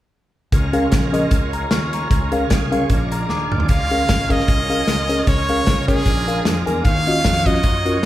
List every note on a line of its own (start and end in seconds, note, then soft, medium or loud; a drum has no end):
0.52 0.86 C#2 loud
0.52 1.10 C#3 medium
0.52 2.08 G#3 medium
0.52 2.08 C#4 medium
0.52 2.09 F4 medium
0.52 2.08 A#4 medium
0.52 kick loud
0.52 closed hi-hat medium
0.73 0.84 C#4 medium
0.73 0.84 G#4 medium
0.73 0.84 A#4 medium
0.73 0.84 F5 medium
0.73 closed hi-hat medium
0.92 1.26 A#1 medium
0.92 kick medium
0.92 snare medium
0.92 closed hi-hat medium
1.12 1.23 C#4 medium
1.12 1.24 G#4 medium
1.12 1.24 A#4 medium
1.12 1.24 D#5 medium
1.12 closed hi-hat medium
1.31 1.65 C#2 medium
1.31 kick loud
1.31 closed hi-hat medium
1.53 1.70 A#5 medium
1.53 closed hi-hat medium
1.71 2.05 D#2 medium
1.71 1.92 C#6 medium
1.71 1.92 F6 medium
1.71 snare loud
1.71 closed hi-hat medium
1.93 2.31 A#5 medium
1.93 2.31 C#6 medium
1.93 closed hi-hat medium
2.10 2.44 C#2 loud
2.10 2.68 C#3 medium
2.10 2.89 G#3 medium
2.10 2.89 C#4 medium
2.10 2.50 F4 medium
2.10 2.50 A#4 medium
2.10 kick loud
2.10 closed hi-hat medium
2.32 2.43 C#4 medium
2.32 2.43 G#4 medium
2.32 2.43 A#4 medium
2.32 2.43 F5 medium
2.32 closed hi-hat medium
2.49 2.84 C2 medium
2.49 2.71 G#4 medium
2.49 2.71 F5 medium
2.49 kick medium
2.49 snare loud
2.49 closed hi-hat medium
2.71 2.82 C#4 medium
2.71 2.89 F4 medium
2.71 2.82 G#4 medium
2.71 2.82 A#4 medium
2.71 3.09 C#5 medium
2.71 2.82 F5 medium
2.71 closed hi-hat medium
2.89 3.24 A#1 medium
2.89 3.47 A#2 medium
2.89 3.68 G#3 medium
2.89 3.68 D4 medium
2.89 3.29 F4 medium
2.89 3.29 A#4 medium
2.89 kick medium
2.89 closed hi-hat medium
3.12 3.29 A#5 medium
3.12 closed hi-hat medium
3.29 3.48 D#2 medium
3.29 3.50 G#4 medium
3.29 3.50 F5 medium
3.29 3.51 A#5 medium
3.29 3.51 D6 medium
3.29 snare medium
3.51 3.66 D2 medium
3.51 3.68 F4 soft
3.51 3.89 D5 medium
3.51 3.89 F6 medium
3.51 mid tom medium
3.60 floor tom medium
3.69 4.03 C#2 loud
3.69 4.27 C#3 medium
3.69 5.24 G#3 medium
3.69 5.24 C#4 medium
3.69 5.24 F4 medium
3.69 5.24 A#4 medium
3.69 4.33 F5 medium
3.69 kick loud
3.69 closed hi-hat medium
3.90 4.01 C#4 medium
3.90 4.01 G#4 medium
3.90 4.01 A#4 medium
3.90 4.02 F5 medium
3.90 closed hi-hat medium
4.09 4.43 G#1 medium
4.09 kick medium
4.09 snare loud
4.09 closed hi-hat medium
4.30 4.40 C#4 medium
4.30 4.41 G#4 medium
4.30 4.40 A#4 medium
4.30 5.29 D#5 medium
4.30 4.41 F5 medium
4.30 kick medium
4.30 closed hi-hat medium
4.40 snare soft
4.48 4.82 C2 medium
4.48 kick medium
4.48 closed hi-hat medium
4.70 4.80 C#4 medium
4.70 4.80 G#4 medium
4.70 4.80 A#4 medium
4.70 4.80 F5 medium
4.70 closed hi-hat medium
4.87 5.21 C#2 medium
4.87 snare loud
4.87 closed hi-hat medium
5.09 5.20 C#4 medium
5.09 5.20 G#4 medium
5.09 5.20 A#4 medium
5.09 5.20 D#5 medium
5.09 closed hi-hat medium
5.25 5.61 C#2 loud
5.25 5.85 C#3 medium
5.25 6.04 G#3 medium
5.25 6.04 C#4 medium
5.25 6.04 F4 medium
5.25 6.04 A#4 medium
5.25 5.87 C#5 loud
5.25 kick loud
5.25 closed hi-hat medium
5.48 5.60 C#4 medium
5.48 5.60 G#4 medium
5.48 5.59 A#4 medium
5.48 5.60 F5 medium
5.48 closed hi-hat medium
5.66 6.01 C2 medium
5.66 kick medium
5.66 snare medium
5.66 closed hi-hat medium
5.88 5.99 C#4 medium
5.88 6.63 G#4 medium
5.88 5.99 G#4 medium
5.88 5.99 A#4 medium
5.88 5.99 C#5 medium
5.88 kick medium
5.88 closed hi-hat medium
5.97 snare soft
6.05 6.40 A#1 medium
6.05 6.64 A#2 medium
6.05 6.84 G#3 medium
6.05 6.84 D4 medium
6.05 6.84 F4 medium
6.05 6.84 A#4 medium
6.05 kick medium
6.05 snare soft
6.05 closed hi-hat medium
6.28 6.38 D4 medium
6.28 6.38 G#4 medium
6.28 6.38 A#4 medium
6.28 6.38 F5 medium
6.28 closed hi-hat medium
6.45 6.64 F2 medium
6.45 snare loud
6.45 closed hi-hat medium
6.66 6.83 E2 medium
6.66 6.77 D4 medium
6.66 6.77 G#4 medium
6.66 6.77 A#4 medium
6.66 6.77 G#5 medium
6.66 closed hi-hat medium
6.84 7.25 D#2 loud
6.84 7.42 D#3 medium
6.84 8.05 D#4 medium
6.84 8.05 F4 medium
6.84 8.05 F#4 medium
6.84 8.05 C#5 medium
6.84 7.48 F5 loud
6.84 kick loud
6.84 closed hi-hat medium
7.07 7.17 C#4 medium
7.07 7.17 F4 medium
7.07 7.17 F#4 medium
7.07 7.18 D#5 medium
7.07 closed hi-hat medium
7.24 7.59 F2 medium
7.24 kick medium
7.24 snare loud
7.24 closed hi-hat medium
7.46 7.57 C#4 medium
7.46 7.57 F4 medium
7.46 7.57 F#4 medium
7.46 8.05 D#5 medium
7.46 7.57 D#5 medium
7.46 kick medium
7.46 closed hi-hat medium
7.55 snare soft
7.63 7.98 F#2 medium
7.63 kick medium
7.63 closed hi-hat medium
7.85 7.96 C#4 medium
7.85 7.96 F4 medium
7.85 7.96 F#4 medium
7.85 7.96 A#4 medium
7.85 closed hi-hat medium